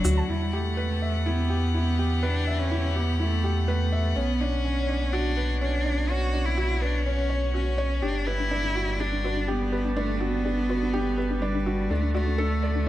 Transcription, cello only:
Already playing: F#3
0.29 G3
0.53 A3
1.26 B3
1.74 B3
2.23 D4
2.58 C#4
2.95 B3
3.19 A3
3.67 A3
4.16 B3
4.40 C#4
5.12 D4
5.62 D4
6.09 F#4
6.46 E4
6.82 D4
7.05 C#4
7.54 C#4
8.02 D4
8.27 E4
9.00 D4
9.48 B3
9.96 A3
10.21 B3
11.41 G3
11.90 A3
12.15 A3

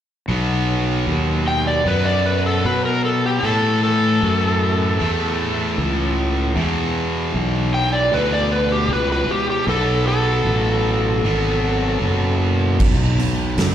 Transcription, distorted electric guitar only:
0.28 B2 F#3 B3
1.85 B2 F#3 B3
3.42 A2 E3 A3
4.99 A2 E3 A3
6.55 E2 B2 E3
8.11 E2 B2 E3
9.67 B2 F#3 B3
11.24 B2 F#3 B3
12.80 E2 B2
13.19 E2 B2
13.58 E2 C#3

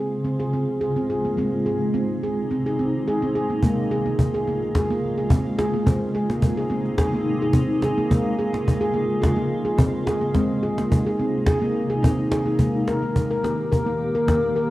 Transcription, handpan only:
Already playing: G#3 G#4
0.24 C4
0.40 G#4
0.53 C4
0.81 G#4
0.96 C4
1.10 G#4
1.25 A#3
1.37 G#3 C4
1.66 G#4
1.94 C4
2.23 G#4
2.51 C4
2.66 G#4
2.79 C4
3.08 G#4
3.22 C4
3.35 G#4
3.50 A#3
3.63 G#3 A#3
3.91 G#4
4.06 A#3
4.34 G#4
4.48 A#3
4.76 G#4
4.91 A#3
5.18 G#4
5.31 C4
5.58 G#4
5.74 A#3
5.86 G#3 C4
6.15 G#4
6.30 A#3
6.57 G#4
6.70 C4
6.98 G#4
7.13 A#3
7.42 G#4
7.54 C4
7.83 G#4
7.98 A#3
8.11 G#3 A#3
8.39 G#4
8.53 A#3
8.81 G#4
8.94 A#3
9.22 G#4
9.37 A#3
9.65 G#4
9.78 C4
10.06 G#4
10.21 A#3
10.34 G#3 C4
10.63 G#4
10.78 A#3
11.06 G#4
11.19 C4
11.47 G#4
11.62 A#3
11.90 G#4
12.03 C4
12.31 G#4
12.46 A#3
12.59 G#3 A#3
12.88 A#4
13.03 A#3
13.31 A#4
13.43 A#3
13.72 A#4
13.86 A#3
14.15 A#4
14.28 A#3
14.56 A#4

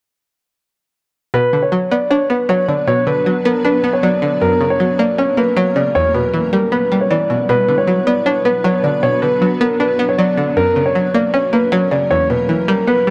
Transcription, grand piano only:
1.34 B4
1.62 C#5
1.92 D5
2.10 C#5
2.30 B4
2.49 C#5
2.68 D5
2.87 C#5
3.07 B4
3.45 A#4
3.64 B4
3.93 C#5
4.03 D5
4.41 A#4
4.70 C#5
4.99 D5
5.19 C#5
5.38 B4
5.57 C#5
5.76 D5
5.95 C#5
6.14 B4
6.53 A#4
6.72 B4
7.01 C#5
7.11 D5
7.49 B4
7.78 C#5
8.07 D5
8.26 C#5
8.45 B4
8.65 C#5
8.84 D5
9.03 C#5
9.22 B4
9.61 A#4
9.80 B4
10.09 C#5
10.18 D5
10.57 A#4
10.86 C#5
11.15 D5
11.34 C#5
11.53 B4
11.72 C#5
11.91 D5
12.11 C#5
12.30 B4
12.68 A#4
12.87 B4

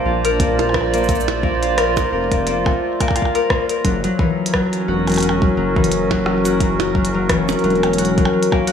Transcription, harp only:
Already playing: A#3
0.05 F4
0.25 A#4
0.40 A#3
0.59 A#4
0.74 A#3
0.94 A#3
1.09 A3
1.43 A#3
1.63 F4
1.78 A#4
1.97 A#3
2.12 A#4
2.32 A#3
2.47 A#3
2.66 A3
3.00 A#3
3.16 F4
3.35 A#4
3.50 A#3
3.69 A#4
3.85 F#3
4.04 F#3
4.19 E3
4.54 F#3
4.73 C#4
4.88 F#4
5.07 F#3
5.23 F#4
5.42 F#3
5.57 F#3
5.76 E3
6.11 F#3
6.26 C#4
6.45 F#4
6.61 F#3
6.80 F#4
6.95 F#3
7.14 F#3
7.30 E3
7.64 F#3
7.83 C#4
7.98 F#4
8.18 F#3
8.33 F#3
8.52 A#3
8.67 F#4

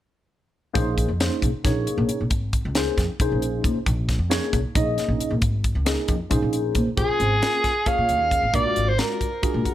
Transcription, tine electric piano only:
0.74 A#3 C#4 D#4 G#4 C5
1.20 A#3 C#4 D#4 G#4 C5
1.64 A#3 C#4 D#4 G#4 C#5
2.76 A#3 C#4 D#4 G#4 C5
3.20 A#3 C#4 D#4 G#4 C5
4.29 A#3 C#4 D#4 G#4 C#5
4.75 A#3 C#4 D#4 G#4 D#5
5.86 A#3 C#4 D#4 G#4 D#5
6.30 A#3 C#4 D#4 G#4 C5
6.97 A#3 C#4 F4 G#4 C5
7.42 A#3 C#4 F4 G#4 A#4
7.86 A#3 C#4 F4 G#4 C#5
8.54 G#3 D4 F4 F#4 A#4
8.98 G#3 D4 F4 F#4 A#4
9.42 G#3 D4 F4 F#4 G#4
9.66 F#5

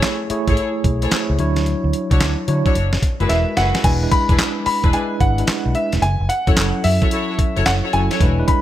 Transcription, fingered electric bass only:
0.30 muted fingered electric bass stroke
0.48 G#1
0.84 B1
1.12 muted fingered electric bass stroke
1.30 C#2
1.39 D2
1.84 D2
2.11 C#2
2.21 D2
2.48 D3
2.75 F#1
3.02 muted fingered electric bass stroke
3.20 F#1
3.30 E1
3.57 F#1
3.84 E1
4.29 E1
4.66 muted fingered electric bass stroke
4.84 E1
5.21 G#1
5.66 B1
5.93 E1
6.02 F#1
6.20 F#1
6.48 E1
6.57 F#1
6.85 F#2
7.39 muted fingered electric bass stroke
7.57 F#1
7.66 F#1
7.94 F#1
8.21 E1

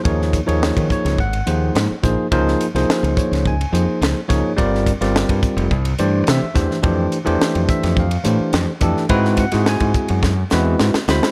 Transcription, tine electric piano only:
0.04 F3 A#3 D#4 G#4 C#5
0.46 F3 A#3 D#4 G#4 C#5
0.92 C#5
1.20 F#5
1.46 F3 A#3 D#4 G#4 C5
2.03 F3 A#3 D#4 G#4 C5
2.32 F3 A#3 D#4 G#4 C5
2.75 F3 A#3 D#4 G#4 C5
3.17 C#5
3.47 G#5
3.73 F3 A#3 D#4 G#4 C5
4.28 F3 A#3 D#4 G#4 C#5
4.56 G3 C4 F4 A#4 D5
5.01 G3 C4 F4 A#4 D5
5.99 E3 A3 D4 G4 C5 D5
6.29 E5
6.55 E3 A3 D4 G4 C5
6.82 E3 A3 D4 G4 C5
7.25 E3 A3 D4 G4 C5
7.70 E5
8.00 F5
8.24 E3 A3 D4 G4 C5
8.81 E3 A3 D4 G4 A4
9.09 G#3 C4 E4 F#4 B4
9.40 F#5
9.52 G#3 C4 E4 F#4 G#4
9.69 G#5
10.52 G#3 C4 E4 F#4 B4
11.08 G#3 C4 E4 F#4 C5 B5

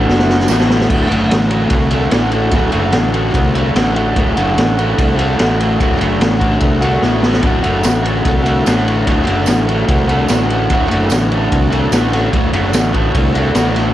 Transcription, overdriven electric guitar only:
Already playing: D3 A3 F#4
0.48 D2 A2 D3 A3 F#4
0.68 A3 F#4
0.72 D3
0.89 D2 A2 D3 A3
0.93 F#4
1.09 D2 A2 D3 A3 F#4
1.51 D3 A3 F#4
1.91 D3 A3 F#4
2.10 A2 D3 A3 F#4
2.32 D3 A3 F#4
2.52 D2 A2 D3 A3
2.56 F#4
2.72 A2 D3 A3 F#4
2.76 D2
3.13 D3 A3 F#4
3.54 D3 A3 F#4
3.74 A2 D3 A3
3.78 F#4
3.95 D3 A3 F#4
4.15 D2 A2 D3 A3
4.19 F#4
4.35 D2 A2 D3 A3 F#4
4.78 D3 A3 F#4
5.16 A3 F#4
5.21 D3
5.36 A2 D3 A3
5.40 F#4
5.58 A3 F#4
5.62 D3
5.79 D2 A2 D3 A3 F#4
5.99 A2 D3 A3 F#4
6.03 D2
6.40 A3 F#4
6.44 D3
6.81 A3 F#4
6.86 D3
7.02 A2 D3 A3 F#4
7.22 D3 A3 F#4
7.42 D2 A2 D3 A3
7.46 F#4
7.63 D2 A2 D3 A3 F#4
8.02 A3 F#4
8.07 D3
8.43 A3 F#4
8.48 D3
8.64 A2 D3 A3
8.68 F#4
8.85 A3 F#4
8.90 D3
9.06 D2 A2 D3 A3 F#4
9.26 A2 D3 A3 F#4
9.31 D2
9.67 A3 F#4
9.71 D3
10.08 D3 A3 F#4
10.28 A2 D3 A3
10.32 F#4
10.49 D3 A3 F#4
10.69 D2 A2 D3 A3
10.74 F#4
10.90 D2 A2 D3 A3 F#4
11.31 A3 F#4
11.36 D3
11.70 A3 F#4
11.75 D3
11.92 A2 D3 A3 F#4
12.13 D3 A3 F#4
12.32 D2 A2 D3 A3
12.37 F#4
12.53 D2 A2 D3 A3 F#4
12.93 A3 F#4
12.97 D3
13.33 A3 F#4
13.38 D3
13.54 A2 D3 A3 F#4
13.74 A3 F#4
13.78 D3

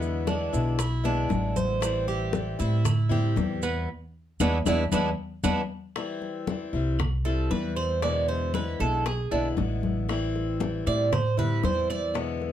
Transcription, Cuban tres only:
Already playing: B3
0.27 D4
0.79 E4
1.05 D4
1.56 C5
2.08 G4
2.59 E4
3.11 G4
3.63 B3
4.41 B3 D4 E4
4.66 B3 D4 E4
4.92 B3 D4 E4
5.44 B3 D4 E4
7.25 A4
7.51 B4
7.76 C5
8.03 D5
8.28 C5
8.55 B4
8.80 A4
9.06 G#4
9.32 D4
10.87 D5
11.13 C5
11.39 B4
11.65 C5
11.90 D5

